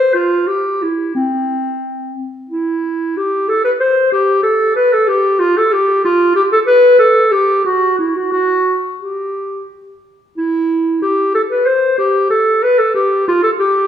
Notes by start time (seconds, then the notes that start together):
Already playing: C5
0.14 F4
0.47 G4
0.82 E4
1.15 C4
2.50 E4
3.17 G4
3.48 A4
3.64 B4
3.80 C5
4.12 G4
4.43 A4
4.75 B4
4.93 A4
5.08 G4
5.39 F4
5.57 A4
5.73 G4
6.05 F4
6.35 G4
6.52 A4
6.67 B4
6.99 A4
7.32 G4
7.65 F#4
7.99 E4
8.16 F#4
8.32 F#4
9.01 G4
10.37 E4
11.02 G4
11.34 A4
11.50 B4
11.66 C5
11.98 G4
12.30 A4
12.63 B4
12.79 A4
12.94 G4
13.28 F4
13.43 A4
13.59 G4